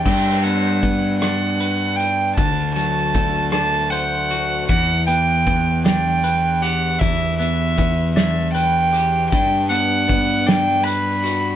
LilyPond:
<<
  \new Staff \with { instrumentName = "Violin" } { \time 6/8 \key g \major \tempo 4. = 52 g''8 fis''4 fis''4 g''8 | a''8 a''4 a''8 fis''4 | fis''8 g''4 g''4 fis''8 | e''8 e''4 e''8 g''4 |
g''8 fis''4 g''8 b''4 | }
  \new Staff \with { instrumentName = "Clean electric guitar" } { \time 6/8 \key g \major g8 b8 b8 d'8 b'4 | d8 fis8 a8 d'8 c''8 fis'8 | e8 b8 b8 d'8 b'8 g'8 | e8 b8 b8 d'8 b'8 g'8 |
g8 b8 b8 d'8 b'8 fis'8 | }
  \new Staff \with { instrumentName = "Picked electric bass" } { \clef bass \time 6/8 \key g \major g,2. | d,2. | e,2. | e,2. |
g,2. | }
  \new DrumStaff \with { instrumentName = "Drums" } \drummode { \time 6/8 <cymc bd>8 hh8 <hh bd>8 <hh ss>8 hh8 hh8 | <hh bd>8 hh8 <hh bd>8 <hh ss>8 hh8 hh8 | <hh bd>8 hh8 <hh bd>8 <hh sn>8 hh8 hh8 | <hh bd>8 hh8 <hh bd>8 <hh sn>8 hh8 hh8 |
<hh bd>8 hh8 <hh bd>8 <hh sn>8 hh8 hh8 | }
>>